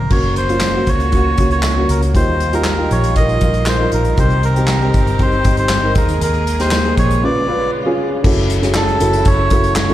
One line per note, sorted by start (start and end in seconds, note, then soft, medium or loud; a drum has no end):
0.00 0.13 D#3 medium
0.00 0.10 A#3 medium
0.00 0.13 D#4 medium
0.00 0.13 G4 medium
0.00 0.12 A#4 medium
0.00 0.13 A#4 medium
0.10 0.84 F#1 medium
0.10 2.12 C#3 medium
0.10 2.13 F#3 medium
0.10 0.45 A#3 medium
0.10 4.14 A#3 medium
0.10 0.45 C#4 medium
0.10 0.45 F#4 medium
0.10 2.12 F#4 medium
0.10 0.35 C#5 medium
0.10 kick medium
0.10 crash medium
0.23 closed hi-hat soft
0.36 0.89 C5 medium
0.36 closed hi-hat medium
0.48 0.72 A#3 medium
0.48 0.72 C#4 medium
0.48 0.72 F4 medium
0.48 closed hi-hat soft
0.60 snare loud
0.60 clap medium
0.60 tambourine medium
0.74 1.09 A#3 medium
0.74 1.09 C#4 medium
0.74 1.09 F#4 medium
0.87 1.35 C#2 medium
0.87 1.50 C#5 medium
0.87 kick medium
0.87 closed hi-hat medium
1.00 closed hi-hat soft
1.12 1.36 A#3 medium
1.12 1.35 C#4 medium
1.12 1.36 F#4 medium
1.12 kick medium
1.12 closed hi-hat medium
1.38 1.86 C#2 medium
1.38 1.73 A#3 medium
1.38 1.73 C#4 medium
1.38 1.73 F#4 medium
1.38 kick medium
1.38 closed hi-hat medium
1.51 1.91 C#5 medium
1.51 closed hi-hat soft
1.62 snare loud
1.62 clap medium
1.62 tambourine medium
1.76 2.11 A#3 medium
1.76 2.11 C#4 medium
1.76 2.11 F#4 medium
1.89 2.13 C#2 medium
1.89 2.01 A#4 medium
1.89 closed hi-hat medium
2.02 closed hi-hat soft
2.14 2.87 D#2 medium
2.14 7.18 D#3 medium
2.14 2.87 D#3 medium
2.14 5.92 G3 medium
2.14 2.49 D#4 medium
2.14 4.15 F4 medium
2.14 2.49 F4 medium
2.14 2.49 G4 medium
2.14 2.54 C5 medium
2.14 kick loud
2.14 closed hi-hat medium
2.40 closed hi-hat medium
2.52 2.76 D#4 medium
2.52 2.76 F4 medium
2.52 2.76 G4 medium
2.52 2.93 A#4 medium
2.52 closed hi-hat medium
2.64 snare loud
2.64 clap medium
2.64 tambourine medium
2.78 3.13 D#4 medium
2.78 3.12 F4 medium
2.78 3.13 G4 medium
2.91 3.38 A#1 medium
2.91 3.15 C#5 medium
2.91 closed hi-hat medium
3.04 closed hi-hat soft
3.16 3.39 D#4 medium
3.16 3.39 F4 medium
3.16 3.39 A#4 medium
3.16 3.69 D#5 loud
3.16 kick medium
3.16 closed hi-hat medium
3.29 closed hi-hat soft
3.41 3.89 A#1 medium
3.41 3.76 D#4 medium
3.41 3.76 F4 medium
3.41 3.76 A#4 medium
3.41 kick medium
3.41 closed hi-hat medium
3.54 closed hi-hat soft
3.66 3.91 C5 medium
3.66 snare loud
3.66 clap medium
3.66 tambourine medium
3.80 4.14 D#4 medium
3.80 4.14 F4 medium
3.80 4.15 A#4 medium
3.92 4.16 A#1 medium
3.92 4.19 A#4 medium
3.92 closed hi-hat medium
4.05 closed hi-hat medium
4.17 4.90 C2 loud
4.17 4.90 C3 medium
4.17 5.94 C4 medium
4.17 4.52 C4 medium
4.17 4.52 D#4 medium
4.17 5.94 G4 medium
4.17 4.53 G4 medium
4.17 4.45 C5 medium
4.17 kick loud
4.17 closed hi-hat medium
4.30 closed hi-hat soft
4.43 5.22 A#4 medium
4.43 closed hi-hat medium
4.56 4.79 C4 medium
4.56 4.79 D#4 medium
4.56 4.79 G4 medium
4.56 closed hi-hat medium
4.67 snare loud
4.67 clap medium
4.67 tambourine medium
4.81 5.16 C4 medium
4.81 5.16 D#4 medium
4.81 5.16 G4 medium
4.81 closed hi-hat soft
4.94 5.41 G1 medium
4.94 kick medium
4.94 closed hi-hat medium
5.07 closed hi-hat soft
5.19 5.42 C4 medium
5.19 5.42 D#4 medium
5.19 5.42 G4 medium
5.19 5.56 C5 medium
5.19 kick medium
5.19 closed hi-hat medium
5.32 closed hi-hat soft
5.44 5.97 G1 medium
5.44 5.79 C4 medium
5.44 5.79 D#4 medium
5.44 5.80 G4 medium
5.44 kick medium
5.44 closed hi-hat medium
5.57 5.94 C5 medium
5.57 closed hi-hat medium
5.69 snare loud
5.69 clap medium
5.69 tambourine medium
5.82 5.95 C4 medium
5.82 5.94 D#4 medium
5.82 5.96 A#4 medium
5.95 6.19 D#2 medium
5.95 6.68 D#3 medium
5.95 8.22 G#3 medium
5.95 6.53 A#3 medium
5.95 7.22 A#3 medium
5.95 6.53 D#4 medium
5.95 6.53 G#4 medium
5.95 7.22 G#4 medium
5.95 6.21 A#4 medium
5.95 kick loud
5.95 closed hi-hat medium
6.08 closed hi-hat soft
6.21 6.93 D#2 medium
6.21 6.61 A#4 medium
6.21 closed hi-hat medium
6.34 closed hi-hat soft
6.47 closed hi-hat medium
6.59 6.82 A#3 medium
6.59 6.82 D#4 medium
6.59 6.82 G4 medium
6.59 6.95 C5 medium
6.59 snare soft
6.59 closed hi-hat medium
6.71 snare loud
6.71 clap medium
6.71 tambourine medium
6.84 7.19 A#3 medium
6.84 7.19 D#4 medium
6.84 7.19 G#4 medium
6.84 closed hi-hat soft
6.97 7.21 A#1 medium
6.97 7.24 C#5 medium
6.97 kick medium
6.97 closed hi-hat medium
7.10 closed hi-hat medium
7.23 7.95 C#3 medium
7.23 8.23 C#3 medium
7.23 8.24 B3 medium
7.23 7.46 C#4 medium
7.23 7.46 F4 medium
7.23 8.24 F4 medium
7.23 7.46 B4 medium
7.23 7.71 D5 medium
7.47 7.82 C#4 medium
7.47 7.82 F4 medium
7.47 7.82 B4 medium
7.86 8.21 C#4 medium
7.86 8.21 F4 medium
7.86 8.21 G#4 loud
8.23 8.97 F#1 loud
8.23 9.94 C#3 medium
8.23 9.94 F#3 medium
8.23 9.94 A3 medium
8.23 8.58 C#4 medium
8.23 8.58 E4 medium
8.23 9.94 E4 medium
8.23 8.59 F#4 medium
8.23 8.59 A4 medium
8.23 kick loud
8.23 crash loud
8.50 closed hi-hat medium
8.62 8.97 C#4 medium
8.62 8.97 E4 medium
8.62 8.97 F#4 medium
8.62 8.97 G#4 medium
8.62 snare soft
8.62 closed hi-hat medium
8.74 9.28 A4 medium
8.74 snare loud
8.74 clap medium
8.88 closed hi-hat soft
9.00 9.24 F#1 loud
9.00 9.46 C#4 medium
9.00 9.46 E4 medium
9.00 9.46 F#4 medium
9.00 9.47 A4 medium
9.00 closed hi-hat medium
9.13 closed hi-hat medium
9.25 9.94 F#1 loud
9.25 9.74 C#5 loud
9.25 kick medium
9.25 closed hi-hat medium
9.50 9.86 C#4 medium
9.50 9.86 E4 medium
9.50 9.86 F#4 medium
9.50 9.86 A4 medium
9.50 kick loud
9.50 closed hi-hat medium
9.64 closed hi-hat medium
9.76 9.94 C#5 loud
9.76 snare loud
9.76 clap medium
9.89 9.94 C#4 medium
9.89 9.94 E4 medium
9.89 9.94 F#4 medium
9.89 9.94 A4 medium
9.89 closed hi-hat soft